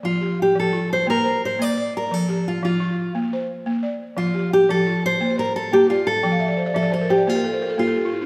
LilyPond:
<<
  \new Staff \with { instrumentName = "Steel-string acoustic guitar" } { \time 12/8 \key f \major \tempo 4. = 116 f'4 g'8 a'4 c''8 bes'4 c''8 d''4 bes'8 | a'4 f'8 f'4. r2. | f'4 g'8 a'4 c''4 bes'8 a'8 g'8 f'8 a'8~ | a'4. a'8 a'8 g'8 f'4. f'4. | }
  \new Staff \with { instrumentName = "Balafon" } { \time 12/8 \key f \major << { d''8 g'4. f'4. c''4. d''4~ | d''8 g'4. f'4. c''4. d''4~ | d''8 g'4. f'4. c''4. d''4~ | d''8 r1 r4. | } \\ { r1. | r1. | r1. | g''16 f''16 e''16 d''16 c''16 d''16 e''16 d''16 c''16 bes'16 c''16 d''16 c''16 bes'16 a'16 c''16 bes'16 a'16 g'16 a'16 g'16 f'16 e'16 d'16 | } >> }
  \new Staff \with { instrumentName = "Balafon" } { \clef bass \time 12/8 \key f \major f4 r8 f4 r8 bes4 r8 bes4 r8 | f4 r8 f4 r8 bes4 r8 bes4 r8 | f4 r8 f4 r8 bes4 r8 bes4 r8 | f4 r8 f4 r8 bes4 r8 bes4 r8 | }
>>